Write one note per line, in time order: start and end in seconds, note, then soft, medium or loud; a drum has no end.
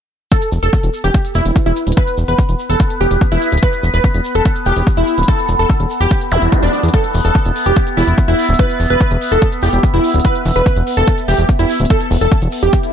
0.32 12.93 B3 medium
0.32 0.49 A4 loud
0.32 6.96 B4 medium
0.32 kick loud
0.32 closed hi-hat medium
0.32 shaker soft
0.42 closed hi-hat medium
0.52 0.58 E1 medium
0.52 shaker medium
0.63 0.69 E1 medium
0.63 0.86 A4 medium
0.63 closed hi-hat medium
0.63 shaker soft
0.73 kick loud
0.73 closed hi-hat medium
0.73 shaker soft
0.83 0.89 E1 medium
0.83 closed hi-hat medium
0.94 shaker medium
1.04 1.10 E1 medium
1.04 1.22 G4 loud
1.04 closed hi-hat medium
1.04 shaker medium
1.14 kick loud
1.14 closed hi-hat medium
1.14 shaker soft
1.25 closed hi-hat medium
1.35 1.41 E1 medium
1.35 1.53 E4 loud
1.35 closed hi-hat soft
1.35 shaker medium
1.45 1.51 E1 medium
1.45 closed hi-hat soft
1.45 shaker medium
1.56 kick loud
1.56 closed hi-hat medium
1.56 shaker soft
1.66 1.72 E1 medium
1.66 1.84 E4 loud
1.66 closed hi-hat medium
1.76 closed hi-hat medium
1.76 shaker medium
1.87 1.93 D1 medium
1.87 closed hi-hat soft
1.87 shaker medium
1.92 closed hi-hat medium
1.96 2.15 B4 loud
1.96 kick loud
1.96 closed hi-hat medium
1.96 shaker soft
2.08 closed hi-hat medium
2.18 2.24 E1 medium
2.18 shaker medium
2.28 2.34 E1 medium
2.28 2.52 B4 medium
2.28 closed hi-hat soft
2.28 shaker medium
2.39 kick loud
2.39 closed hi-hat medium
2.39 shaker soft
2.49 2.55 E1 medium
2.49 closed hi-hat medium
2.59 shaker medium
2.69 2.75 E1 medium
2.69 2.87 A4 medium
2.69 closed hi-hat medium
2.69 shaker soft
2.80 kick loud
2.80 closed hi-hat medium
2.80 shaker soft
2.90 closed hi-hat medium
3.01 3.06 E1 medium
3.01 3.18 G4 loud
3.01 closed hi-hat soft
3.01 shaker medium
3.11 3.17 E1 medium
3.11 closed hi-hat medium
3.11 shaker medium
3.21 kick loud
3.21 closed hi-hat medium
3.21 shaker soft
3.32 3.37 E1 medium
3.32 3.49 E4 medium
3.32 closed hi-hat medium
3.42 closed hi-hat medium
3.42 shaker medium
3.52 3.58 D1 medium
3.52 closed hi-hat soft
3.52 shaker medium
3.58 closed hi-hat medium
3.62 3.80 B4 loud
3.62 kick loud
3.62 shaker soft
3.73 closed hi-hat soft
3.83 3.89 E1 medium
3.83 shaker loud
3.94 4.00 E1 medium
3.94 4.17 B4 medium
3.94 closed hi-hat soft
3.94 shaker soft
4.03 kick loud
4.03 closed hi-hat medium
4.03 shaker soft
4.14 4.20 E1 medium
4.14 closed hi-hat medium
4.24 shaker loud
4.35 4.41 E1 medium
4.35 4.53 A4 medium
4.35 closed hi-hat medium
4.35 shaker medium
4.45 kick loud
4.45 closed hi-hat medium
4.45 shaker soft
4.56 closed hi-hat medium
4.66 4.72 E1 loud
4.66 4.84 G4 loud
4.66 closed hi-hat soft
4.66 shaker medium
4.76 4.82 E1 medium
4.76 closed hi-hat soft
4.76 shaker medium
4.87 kick loud
4.87 closed hi-hat medium
4.87 shaker soft
4.97 5.03 E1 medium
4.97 5.15 E4 loud
4.97 closed hi-hat medium
5.08 closed hi-hat medium
5.08 shaker loud
5.18 5.24 D1 medium
5.18 closed hi-hat soft
5.18 shaker medium
5.23 closed hi-hat medium
5.28 5.46 A4 loud
5.28 kick loud
5.28 closed hi-hat medium
5.28 shaker soft
5.39 closed hi-hat soft
5.48 5.55 E1 medium
5.48 closed hi-hat soft
5.48 shaker loud
5.59 5.65 E1 medium
5.59 5.83 A4 medium
5.59 closed hi-hat soft
5.59 shaker medium
5.70 kick loud
5.70 closed hi-hat medium
5.70 shaker soft
5.80 5.86 E1 medium
5.80 closed hi-hat medium
5.90 shaker medium
6.01 6.06 E1 medium
6.01 6.18 G4 loud
6.01 closed hi-hat soft
6.01 shaker medium
6.11 kick loud
6.11 closed hi-hat medium
6.11 shaker soft
6.21 closed hi-hat medium
6.32 6.37 E1 medium
6.32 6.49 E4 loud
6.32 closed hi-hat soft
6.32 zap medium
6.32 shaker medium
6.42 6.48 E1 medium
6.42 closed hi-hat soft
6.42 shaker medium
6.52 kick loud
6.52 closed hi-hat medium
6.52 shaker soft
6.63 6.69 E1 medium
6.63 6.80 D4 loud
6.63 closed hi-hat medium
6.73 closed hi-hat soft
6.73 shaker medium
6.83 6.89 E2 medium
6.83 closed hi-hat soft
6.83 shaker medium
6.89 closed hi-hat medium
6.93 7.11 A4 loud
6.93 12.93 E5 medium
6.93 kick loud
6.93 closed hi-hat medium
6.93 shaker soft
7.04 closed hi-hat medium
7.14 7.20 E1 medium
7.14 open hi-hat loud
7.14 shaker medium
7.24 7.31 E1 medium
7.24 7.48 A4 medium
7.24 closed hi-hat soft
7.24 shaker medium
7.35 kick loud
7.35 closed hi-hat medium
7.35 shaker soft
7.45 7.51 E1 medium
7.45 closed hi-hat soft
7.56 open hi-hat loud
7.56 shaker loud
7.66 7.72 E1 medium
7.66 7.84 G4 medium
7.66 closed hi-hat soft
7.66 shaker soft
7.76 kick loud
7.76 closed hi-hat medium
7.76 shaker soft
7.87 closed hi-hat medium
7.97 8.03 E1 medium
7.97 8.15 E4 medium
7.97 open hi-hat loud
7.97 shaker medium
8.08 8.13 E1 medium
8.08 closed hi-hat soft
8.08 shaker medium
8.18 kick loud
8.18 closed hi-hat medium
8.18 shaker soft
8.28 8.34 E1 medium
8.28 8.46 E4 loud
8.28 closed hi-hat soft
8.39 open hi-hat loud
8.39 shaker loud
8.49 8.55 D1 medium
8.49 closed hi-hat soft
8.49 shaker medium
8.54 closed hi-hat medium
8.59 8.77 B4 loud
8.59 kick loud
8.59 closed hi-hat medium
8.59 shaker soft
8.70 closed hi-hat medium
8.80 8.86 E1 medium
8.80 open hi-hat loud
8.80 shaker medium
8.90 8.96 E1 medium
8.90 9.14 B4 medium
8.90 closed hi-hat medium
8.90 shaker medium
9.00 kick loud
9.00 closed hi-hat medium
9.00 shaker soft
9.11 9.17 E1 medium
9.11 closed hi-hat medium
9.21 open hi-hat loud
9.21 shaker medium
9.31 9.37 E1 medium
9.31 9.49 A4 loud
9.31 closed hi-hat medium
9.31 shaker soft
9.42 kick loud
9.42 closed hi-hat medium
9.42 shaker soft
9.52 closed hi-hat medium
9.62 9.69 E1 medium
9.62 9.80 G4 medium
9.62 open hi-hat loud
9.62 shaker medium
9.73 9.79 E1 medium
9.73 closed hi-hat soft
9.73 shaker soft
9.83 kick loud
9.83 closed hi-hat medium
9.83 shaker soft
9.94 10.00 E1 medium
9.94 10.11 E4 medium
9.94 closed hi-hat medium
10.04 open hi-hat loud
10.04 shaker medium
10.14 10.20 D1 medium
10.14 closed hi-hat soft
10.14 shaker soft
10.20 closed hi-hat medium
10.25 10.42 B4 loud
10.25 kick loud
10.25 closed hi-hat medium
10.25 shaker soft
10.35 closed hi-hat medium
10.45 10.51 E1 medium
10.45 open hi-hat loud
10.45 shaker medium
10.56 10.62 E1 medium
10.56 10.79 B4 loud
10.56 closed hi-hat medium
10.56 shaker soft
10.66 kick loud
10.66 closed hi-hat medium
10.66 shaker soft
10.76 10.82 E1 medium
10.76 closed hi-hat medium
10.87 open hi-hat loud
10.87 shaker medium
10.97 11.03 E1 medium
10.97 11.15 A4 loud
10.97 closed hi-hat medium
10.97 shaker soft
11.07 kick loud
11.07 closed hi-hat medium
11.07 shaker soft
11.18 closed hi-hat medium
11.28 11.34 E1 medium
11.28 11.46 G4 medium
11.28 open hi-hat loud
11.28 shaker medium
11.39 11.44 E1 medium
11.39 closed hi-hat medium
11.39 shaker soft
11.49 kick loud
11.49 closed hi-hat medium
11.49 shaker soft
11.59 11.65 E1 medium
11.59 11.77 E4 loud
11.59 closed hi-hat medium
11.70 open hi-hat loud
11.70 shaker medium
11.80 11.86 D1 medium
11.80 closed hi-hat soft
11.80 shaker soft
11.85 closed hi-hat medium
11.89 12.08 A4 loud
11.89 kick loud
11.89 closed hi-hat medium
11.89 shaker soft
12.01 closed hi-hat medium
12.11 12.17 E1 medium
12.11 open hi-hat loud
12.11 shaker medium
12.21 12.27 E1 medium
12.21 12.45 A4 medium
12.21 closed hi-hat medium
12.21 shaker soft
12.32 kick loud
12.32 closed hi-hat medium
12.32 shaker soft
12.42 12.48 E1 medium
12.42 closed hi-hat medium
12.52 open hi-hat loud
12.52 shaker medium
12.62 12.69 E1 medium
12.62 12.80 G4 loud
12.62 closed hi-hat medium
12.62 shaker soft
12.72 kick loud
12.72 closed hi-hat medium
12.72 swell medium
12.72 shaker soft
12.83 closed hi-hat medium